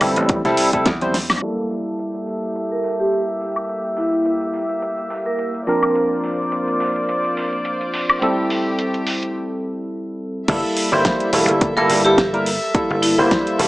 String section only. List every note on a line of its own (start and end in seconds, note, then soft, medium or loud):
1.43 8.18 A#3 medium
1.43 5.64 G4 medium
1.43 3.67 A4 medium
1.43 5.63 E5 medium
5.67 8.19 F4 medium
5.67 9.31 C5 medium
5.67 8.19 D5 medium
8.22 9.34 A3 medium
8.22 9.34 G4 medium
10.48 13.68 A4 medium
10.48 13.68 E5 medium